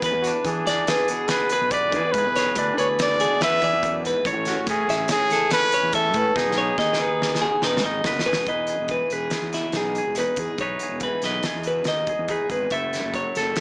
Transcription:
Already playing: E3 G#4
0.02 E2 B4, kick, closed hi-hat
0.14 E2
0.22 F#4, closed hi-hat
0.27 D4
0.45 E3 D4 G#4, kick, closed hi-hat
0.67 E2 D4 D5, snare, closed hi-hat
0.87 G#4 B4, snare, closed hi-hat
1.08 B2 G#4, closed hi-hat
1.28 G#4 B4, snare, closed hi-hat
1.49 G#4 B4, closed hi-hat
1.61 B1
1.71 E2 B4 D5, kick, closed hi-hat
1.92 E3 G#4 B4, kick, closed hi-hat
2.12 G#2 B4, kick, closed hi-hat
2.17 E2 G#4
2.25 B1
2.36 G#4 C#5, snare, closed hi-hat
2.55 D2 E3 D4 D5, kick, closed hi-hat
2.77 D2 G#4 B4 C#5, closed hi-hat
2.99 D5, snare, closed hi-hat
3.20 B2 G#4, closed hi-hat
3.41 E2 B4 E5, snare, closed hi-hat
3.62 E3 G#4 D5, kick, closed hi-hat
3.73 E2
3.83 F#2, kick, closed hi-hat
4.05 G#2 B4, closed hi-hat
4.25 A1 A2 C#5, kick, closed hi-hat
4.35 A1
4.45 C#4 F#4, snare, closed hi-hat
4.66 A2 E3 C#4 G#4, kick, snare, closed hi-hat
4.88 A1 C#4 E5, snare, closed hi-hat
5.08 G#4 C#5, snare, closed hi-hat
5.30 E3 A4, snare, closed hi-hat
5.50 C#4 B4, snare, closed hi-hat
5.72 C#4 C#5, closed hi-hat
5.83 E2
5.93 A2 C#4 A4 E5, kick, closed hi-hat
6.14 A2 C#4 B4, kick, closed hi-hat
6.36 E1 D#4 G#4, kick, snare
6.46 B1
6.52 snare
6.58 D#4 C#5
6.78 D#2 D#4 D#5, kick, snare
6.93 snare
6.99 D#2 D#4 B4
7.22 snare
7.35 snare
7.42 B2 G#4
7.62 E1 D#4 B4, snare
7.77 snare
7.84 G#1 D#4 D#5
8.04 F#1 E2 B4, kick, snare
8.19 snare
8.26 E1 G#4 B4
8.33 snare
8.46 E1 E2 D#4 G#4 B4 D#5, kick, closed hi-hat
8.67 G#4, closed hi-hat
8.80 E1
8.88 E3 B4, kick, closed hi-hat
9.10 E1 G#4 B4, closed hi-hat
9.30 G#4, snare, closed hi-hat
9.42 E2
9.53 B2 E4, snare, closed hi-hat
9.72 B1 D#4, snare, closed hi-hat
9.76 G#4
9.95 G#4, closed hi-hat
10.07 E1
10.15 E2 D#4 B4, closed hi-hat
10.20 G#4 B4
10.36 E2 G#4, kick, closed hi-hat
10.58 B1 E2 D#4 G#4 C#5, kick, closed hi-hat
10.62 B4
10.79 G#4, closed hi-hat
10.91 E1
11.00 E3 B4, kick, closed hi-hat
11.22 B1 B4 D#5, snare, closed hi-hat
11.43 G#4, snare, closed hi-hat
11.55 E2
11.63 B2 B4, closed hi-hat
11.84 D#2 D#5, snare, closed hi-hat
11.89 D#4
12.07 G#4, kick, closed hi-hat
12.19 E2
12.28 E2 D#4 G#4 B4, kick, closed hi-hat
12.49 G#1 G#4 B4, kick, closed hi-hat
12.70 F#1 F#2 A3 E4 A4 E5, kick, closed hi-hat
12.93 E4, snare, closed hi-hat
13.04 F#1
13.14 F#3 C#5, kick, closed hi-hat
13.35 F#1 A4, snare, closed hi-hat
13.56 snare, closed hi-hat

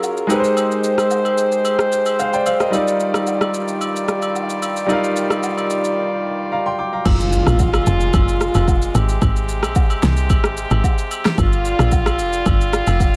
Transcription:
Already playing: F#3 C#4 F4 G#4 A#4
0.03 low woodblock, shaker
0.17 shaker
0.27 G#3 D#4 G4 C5, high agogo, shaker
0.32 A#4 B4
0.40 C5
0.44 shaker
0.57 high agogo, shaker
0.71 shaker
0.84 shaker
0.98 cross-stick, high agogo, shaker
1.11 low woodblock, shaker
1.25 high agogo, shaker
1.38 shaker
1.52 shaker
1.65 high agogo, shaker
1.79 cross-stick, shaker
1.92 shaker
2.06 high agogo, shaker
2.19 C5 F5, low woodblock, shaker
2.33 D5 G5, shaker
2.46 C5 F5, high agogo, shaker
2.60 A#4 D#5, cross-stick, shaker
2.70 G2 D#3 G3 D#4 F4 D5, high agogo, shaker
2.75 A#4 D5
2.88 shaker
3.00 shaker
3.14 cross-stick, high agogo, shaker
3.27 low woodblock, shaker
3.41 cross-stick, high agogo, shaker
3.54 shaker
3.68 shaker
3.81 high agogo, shaker
3.96 shaker
4.08 cross-stick, shaker
4.22 high agogo, shaker
4.35 low woodblock, shaker
4.50 shaker
4.62 high agogo, shaker
4.76 shaker
4.86 G3 D#4 F4, high agogo, shaker
4.91 A#4 F5
5.04 shaker
5.16 shaker
5.30 cross-stick, high agogo, shaker
5.43 low woodblock, shaker
5.58 high agogo, shaker
5.70 shaker
5.84 shaker
6.52 F5 A#5
6.66 G5 C6
6.79 G5 D6
6.93 F5 A#5
7.05 F#1 A#2 G#3 F4, kick, crash, impact, high agogo, shaker
7.20 shaker
7.33 shaker
7.47 A#1, cross-stick, high agogo, shaker
7.59 kick, low woodblock, shaker
7.74 cross-stick, high agogo, shaker
7.86 F1, shaker
8.00 shaker
8.14 F#1, kick, high agogo, shaker
8.28 shaker
8.41 cross-stick, shaker
8.54 F1, high agogo, shaker
8.68 kick, low woodblock, shaker
8.82 shaker
8.95 G#1 C3 G4, high agogo, shaker
9.09 shaker
9.22 G#1, kick, high agogo, shaker
9.36 shaker
9.49 shaker
9.63 A#1, cross-stick, high agogo, shaker
9.75 kick, low woodblock, shaker
9.90 high agogo, shaker
10.03 C2, snare, shaker
10.17 shaker
10.30 G#1, kick, high agogo, shaker
10.44 cross-stick, shaker
10.57 shaker
10.71 G#1, high agogo, shaker
10.84 kick, low woodblock, shaker
10.98 shaker
11.11 high agogo, shaker
11.25 cross-stick, snare, shaker
11.38 G1 D3 G3 F4, kick, high agogo, shaker
11.53 shaker
11.65 shaker
11.79 A#1, cross-stick, high agogo, shaker
11.92 kick, low woodblock, shaker
12.06 cross-stick, high agogo, shaker
12.19 F1, shaker
12.33 shaker
12.46 G1, kick, high agogo, shaker
12.61 shaker
12.73 cross-stick, shaker
12.87 F1, high agogo, shaker
13.00 kick, low woodblock, shaker

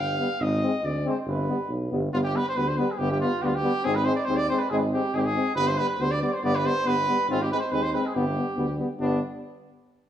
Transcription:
Already playing: G1 F5
0.19 G3 B3
0.39 G#1 D#5
0.62 G#3 C4
0.83 D2 D5
1.05 G#3 C4 C5
1.20 C5
1.26 G1 B4
1.49 G3 B3
1.69 B1
1.91 G1 G3 B3
2.13 G1 G3 B3 F4
2.24 G4
2.33 G3 B3 B4
2.49 C5
2.56 D2 G3 B3 B4
2.68 C5
2.77 G3 B3 B4
2.91 G#4
2.98 G1 B3 G4
3.02 G3
3.11 G4
3.21 G3 B3 F4
3.42 D2 G3 B3 G4
3.46 F4
3.55 G4
3.63 G3 B3
3.84 G#1 G#3 C4 G#4
3.95 B4
4.05 G#3 C4 C5
4.16 D5
4.25 D#2 G#3 C4 C5
4.36 D5
4.49 G#3 C4 C5
4.59 B4
4.70 G#1 G#3 C4 G#4
4.78 B4
4.93 G#3 C4 G4
5.13 G#1 G#3 C4 G#4
5.19 G4
5.25 G#4
5.35 G#3 C4
5.55 G1 G3 B3 B4
5.67 C5
5.78 G3 B3 B4
5.89 B4
5.99 D2 G3 B3 C5
6.11 D5
6.22 G3 B3 D5
6.33 C5
6.42 G1 G3 B3 D5
6.55 B4
6.65 G3 B3 C5
6.84 G1 G3 B3 B4
7.08 G3 B3
7.28 G#1 G#3 C4 F4
7.42 G4
7.51 G#3 C4 B4
7.60 C5
7.71 D#2 G#3 C4 B4
7.82 C5
7.93 G#3 C4 B4
8.06 G#4
8.14 G1 G3 B3 G4
8.37 G3 B3
8.56 D2 G3 B3
8.78 G3 B3
8.99 G1 G3 B3 D4

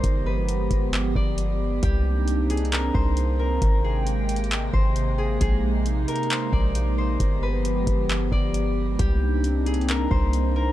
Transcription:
Already playing: G#3 G#4 A#4 C5 D5
0.04 G1 F3 B3 G4, kick, closed hi-hat
0.26 B4
0.49 closed hi-hat
0.71 G1, kick, closed hi-hat
0.93 clap, closed hi-hat
1.15 G1 D5, kick
1.38 closed hi-hat
1.83 C2 A#3 C4 D4 D#4 G4, kick, closed hi-hat
2.28 closed hi-hat
2.50 G#4, closed hi-hat
2.57 closed hi-hat
2.65 closed hi-hat
2.72 A#4, clap, closed hi-hat
2.94 C2 C5, kick
3.17 closed hi-hat
3.39 A#4
3.62 G#1 C3 G#3 G5, kick, closed hi-hat
3.84 G#4
4.07 closed hi-hat
4.29 closed hi-hat
4.36 closed hi-hat
4.44 closed hi-hat
4.51 clap, closed hi-hat
4.73 G#1 C5, kick
4.96 closed hi-hat
5.18 G#4
5.41 A#1 D#4 G#4, kick, closed hi-hat
5.86 closed hi-hat
6.08 A#4, closed hi-hat
6.16 closed hi-hat
6.23 closed hi-hat
6.30 C5, clap, closed hi-hat
6.53 A#1 D5, kick
6.75 closed hi-hat
6.98 C5
7.20 G1 F3 B3 G4, kick, closed hi-hat
7.43 B4
7.65 closed hi-hat
7.87 G1, kick, closed hi-hat
8.09 clap, closed hi-hat
8.32 G1 D5, kick
8.54 closed hi-hat
8.99 C2 A#3 C4 D4 D#4 G4, kick, closed hi-hat
9.44 closed hi-hat
9.66 G#4, closed hi-hat
9.74 closed hi-hat
9.81 closed hi-hat
9.89 A#4, clap, closed hi-hat
10.11 C2 C5, kick
10.33 closed hi-hat
10.56 A#4

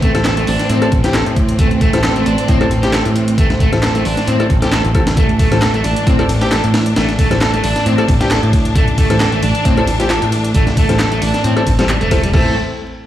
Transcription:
Already playing: A1 E3 A3 C4
0.02 A3, kick, closed hi-hat
0.15 A1 C4 E4 A4, snare, closed hi-hat
0.25 A4, snare, clap, closed hi-hat
0.37 A3, closed hi-hat
0.47 A1 D4, open hi-hat
0.59 snare, closed hi-hat
0.69 A2 C4, closed hi-hat
0.82 C4 D4 E4 A4, closed hi-hat
0.92 A1, kick, closed hi-hat
1.04 C4 E4 G4, snare, closed hi-hat
1.14 A4, snare, clap, closed hi-hat
1.26 A2, closed hi-hat
1.36 kick, closed hi-hat
1.49 closed hi-hat
1.59 A1 A3, kick, closed hi-hat
1.71 closed hi-hat
1.81 A3, kick, closed hi-hat
1.93 A1 C4 E4 A4, snare, closed hi-hat
2.04 A4, snare, clap, closed hi-hat
2.16 A3, closed hi-hat
2.26 A1 D4, closed hi-hat
2.38 closed hi-hat
2.48 A2 C4, kick, closed hi-hat
2.61 C4 D4 E4 A4, closed hi-hat
2.71 A1, closed hi-hat
2.83 C4 E4 G4, snare, closed hi-hat
2.93 A4, snare, clap, closed hi-hat
3.05 A2, closed hi-hat
3.16 closed hi-hat
3.28 closed hi-hat
3.38 A1 A3, kick, closed hi-hat
3.50 snare, closed hi-hat
3.60 A3, kick, closed hi-hat
3.73 A1 C4 E4 A4, snare, closed hi-hat
3.83 A4, snare, clap, closed hi-hat
3.95 A3, closed hi-hat
4.05 A1 D4, open hi-hat
4.17 snare, closed hi-hat
4.27 A2 C4, closed hi-hat
4.40 C4 D4 E4 A4, closed hi-hat
4.50 A1, kick, closed hi-hat
4.62 C4 E4 G4 A4, snare, closed hi-hat
4.72 A4, snare, clap, closed hi-hat
4.84 A1, closed hi-hat
4.95 C4 E4 A4, kick, closed hi-hat
5.07 snare, closed hi-hat
5.17 A1 A3 D4, kick, closed hi-hat
5.29 closed hi-hat
5.39 A3, kick, closed hi-hat, ride
5.52 A1 C4 E4 A4, snare, closed hi-hat
5.62 A4, snare, clap, closed hi-hat
5.74 A3, closed hi-hat
5.84 A1 D4, closed hi-hat, ride
5.96 closed hi-hat
6.07 A2 C4, kick, closed hi-hat
6.19 C4 D4 E4 A4, closed hi-hat
6.29 A1, closed hi-hat, ride
6.41 C4 E4 G4, snare, closed hi-hat
6.51 A4, snare, clap, closed hi-hat
6.64 A2, closed hi-hat
6.74 snare, closed hi-hat, ride
6.86 closed hi-hat
6.96 A1 A3, snare, closed hi-hat
7.09 snare, closed hi-hat
7.19 A3, kick, closed hi-hat, ride
7.31 A1 C4 E4 A4, snare, closed hi-hat
7.41 A4, snare, clap, closed hi-hat
7.54 A3, closed hi-hat
7.64 A1 D4, open hi-hat, ride
7.76 snare, closed hi-hat
7.86 A2 C4, closed hi-hat
7.98 C4 D4 E4 A4, closed hi-hat
8.08 A1, kick, closed hi-hat, ride
8.21 C4 E4 G4, snare, closed hi-hat
8.31 A4, snare, clap, closed hi-hat
8.43 A2, closed hi-hat
8.53 kick, closed hi-hat, ride
8.65 closed hi-hat
8.75 A1 A3, kick, closed hi-hat
8.88 closed hi-hat
8.98 A3, kick, closed hi-hat, ride
9.10 A1 C4 E4 A4, snare, closed hi-hat
9.20 A4, snare, clap, closed hi-hat
9.32 A3, closed hi-hat
9.43 A1 D4, closed hi-hat, ride
9.55 closed hi-hat
9.65 A2 C4, kick, closed hi-hat
9.77 C4 D4 E4 A4, closed hi-hat
9.87 A1, closed hi-hat, ride
10.00 C4 E4 G4, snare, closed hi-hat
10.10 A4, snare, clap, closed hi-hat
10.22 A2, closed hi-hat
10.32 closed hi-hat, ride
10.44 closed hi-hat
10.55 A1 A3, kick, closed hi-hat
10.67 snare, closed hi-hat
10.77 A3, kick, closed hi-hat, ride
10.89 A1 C4 E4 A4, snare, closed hi-hat
10.99 A4, snare, clap, closed hi-hat
11.11 A3, closed hi-hat
11.22 A1 D4, open hi-hat, ride
11.34 snare, closed hi-hat
11.44 A2 C4, closed hi-hat
11.56 C4 D4 E4 A4, closed hi-hat
11.66 A1, kick, closed hi-hat, ride
11.79 G3 C4 E4 A4, snare, closed hi-hat
11.89 G3, clap, closed hi-hat
12.01 E1 A3, closed hi-hat
12.11 A3 C4 E4 A4, kick, closed hi-hat, ride
12.23 G3, closed hi-hat
12.34 A1 A2 E3 A3 C4 E4 A4, kick, crash

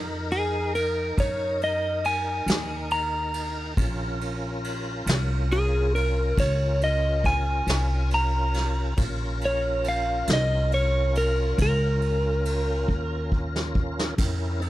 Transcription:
Already playing: F2 D#4 A#4
0.31 G#4, ride
0.75 A#4, ride
1.17 F#2 C#5, kick, ride
1.61 D#5, ride
2.04 G#5, ride
2.46 D#2, snare, ride
2.91 A#5, ride
3.34 ride
3.77 A#1 C#4 F4 A#4, kick, ride
4.21 ride
4.64 ride
5.06 C2, snare, ride
5.51 G#4, ride
5.95 A#4, ride
6.38 C#2 C#5, kick, ride
6.81 D#5, ride
7.24 G#5, kick, ride
7.67 C2, snare, ride
8.11 A#5, ride
8.54 snare, ride
8.97 A#1 C#4 F4 A#4, kick, ride
9.41 ride
9.45 C#5
9.84 ride
9.88 F5
10.27 C2, snare, ride
10.33 D#5
10.72 C#5, ride
11.15 A#4, ride
11.58 C#2, kick, ride
11.62 A#4
12.02 ride
12.45 ride
12.88 D#2, kick
13.32 kick
13.56 snare
13.75 kick
13.99 snare
14.18 F2 C#4 E4 A#4, kick, ride, crash
14.60 C4 D#4 A4, ride

